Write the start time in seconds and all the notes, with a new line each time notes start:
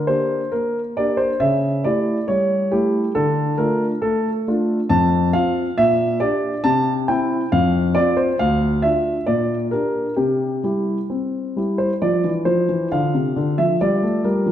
0.07 A#3 D4 G4 C5
0.52 A#3 A#4
0.97 A#3 D4 G4 D5
1.17 C5
1.40 C#3 E5
1.84 A3 E4 G4 D5
2.28 G3 C#5
2.72 A3 E4 G4
3.15 D3 A4
3.58 A3 D4 F4 A#4
4.02 A3 A4
4.48 A3 D4 F4
4.90 F2 A5
5.33 C4 F4 F5
5.78 A#2 E5
6.20 D4 G4 D5
6.64 C3 A5
7.08 C4 E4 G5
7.52 F2 F5
7.95 C4 F4 D5
8.17 C5
8.39 D2 F5
8.82 D4 F4 E5
9.26 A#2 D5
9.71 D4 G4 A#4
10.16 C3 G4
10.64 G3 E4 G4
11.10 C4
11.56 G3 E4 G4
11.78 C5
12.02 F3 F4 D5
12.24 E3
12.45 F3 C5
12.69 E3
12.92 D3 F4 F5
13.14 C3
13.36 D3
13.58 F3 E5
13.81 G3 F4 D5
14.03 A3
14.24 G3 A#4
14.46 F3